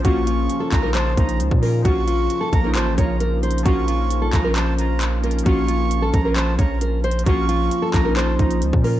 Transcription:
Already playing: C#3 F3 A#3 C#4 F4
0.02 A#1 F3 A#3 C#4 D#4 F#4 C#6, kick, closed hi-hat
0.07 F4
0.27 F4, closed hi-hat
0.50 closed hi-hat
0.60 A4
0.72 A#1 A#5, kick, clap, closed hi-hat
0.81 F3 A#3 C#4 A#4
0.86 D#4
0.95 C5 A5, clap, closed hi-hat
1.15 A#1 F3 A#3 C#4 A#5, kick, closed hi-hat
1.20 D#4
1.29 closed hi-hat
1.40 C#2, closed hi-hat
1.51 A#2, kick
1.60 F3 A#3 C#4 A#4, open hi-hat
1.65 F4
1.82 A#1 F3 A#3 C#4 F4 F#4 C#6, kick, closed hi-hat
1.88 F4
2.07 F4, closed hi-hat
2.30 closed hi-hat
2.41 A4
2.53 A#1 A#5, kick, closed hi-hat
2.61 F3 A#3 C#4 A#4
2.67 D#4
2.75 A1 C5 A5, clap, closed hi-hat
2.95 A#1 F3 A#3 C#4 C#5 A#5, kick, closed hi-hat
3.01 F4
3.20 A#4, closed hi-hat
3.43 C5, closed hi-hat
3.51 closed hi-hat
3.58 closed hi-hat
3.63 A#1 F3 A#3 C#4 D#4 F#4 C#6, kick, closed hi-hat
3.68 F4
3.88 F4, closed hi-hat
4.10 closed hi-hat
4.22 A4
4.33 A#1 A#5, kick, clap, closed hi-hat
4.42 F3 A#3 C#4 A#4
4.47 F4
4.56 C5 A5, clap, closed hi-hat
4.76 F3 A#3 C#4 A#5, closed hi-hat
4.81 F4
5.01 clap, closed hi-hat
5.21 F3 A#3 C#4 A#4, closed hi-hat
5.26 F4
5.31 closed hi-hat
5.39 closed hi-hat
5.43 A#1 C#3 F3 A#3 C#4 F4 F#4 C#6, kick, closed hi-hat
5.49 F4
5.68 F4, closed hi-hat
5.91 closed hi-hat
6.02 A4
6.14 A#1 A#5, kick, closed hi-hat
6.22 F3 A#3 C#4 A#4
6.28 F4
6.36 C5 A5, clap, closed hi-hat
6.56 A#1 F3 A#3 C#4 C#5 A#5, kick, closed hi-hat
6.61 F4
6.81 A#4, closed hi-hat
7.04 C5, closed hi-hat
7.11 closed hi-hat
7.19 closed hi-hat
7.24 A#1 F3 A#3 C#4 F#4 A4 C#6, kick, closed hi-hat
7.29 F4
7.49 F4, closed hi-hat
7.71 closed hi-hat
7.82 A4
7.94 A#1 A#5, kick, clap, closed hi-hat
8.03 F3 A#3 C#4 A#4
8.08 D#4
8.17 C5 A5, clap, closed hi-hat
8.37 A#1 F3 A#3 C#4 A#5, kick, closed hi-hat
8.42 D#4
8.51 closed hi-hat
8.62 C#2, closed hi-hat
8.73 A#2, kick
8.82 F3 A#3 C#4 A#4, open hi-hat
8.87 F4

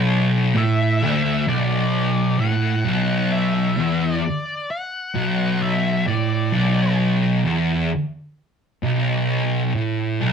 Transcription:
Already playing: B1
0.55 A2 E5
1.02 D2
1.47 B1 D5
2.39 A2 F#5
2.85 B1
3.32 E5
3.77 E2
4.00 D5
4.70 F#5
5.14 B1
5.62 E5
6.06 A2 D5
6.53 B1
7.45 E2
8.83 B1
9.74 A2
10.21 B1

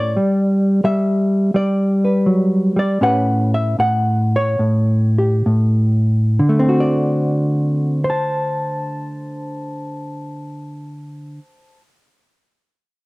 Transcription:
Already playing: A2 A3 C#4 G4 C#5 D5
0.16 G3
0.84 G3 E5
1.54 G3 D5
2.05 B4
2.26 F#3
2.76 G3 D5
3.01 A2 C#4 G4 B4 F#5
3.54 E5
3.79 A2 F#5
4.36 C#5
4.59 A2
5.18 G4
5.46 A2
6.39 D3
6.49 A3
6.59 C4
6.69 F#4
6.80 D5
8.04 C5
8.10 A5

